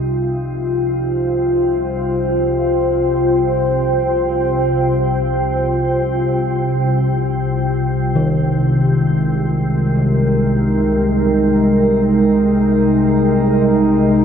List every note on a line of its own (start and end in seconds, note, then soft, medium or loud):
0.00 14.25 C2 medium
0.00 14.25 C3 medium
0.00 1.53 D#4 medium
0.00 9.77 F4 medium
0.15 8.14 C5 medium
0.15 11.79 G5 medium
8.14 14.25 D#3 medium
8.14 14.25 G#3 medium
9.16 14.25 A#4 medium
9.62 14.25 D#4 medium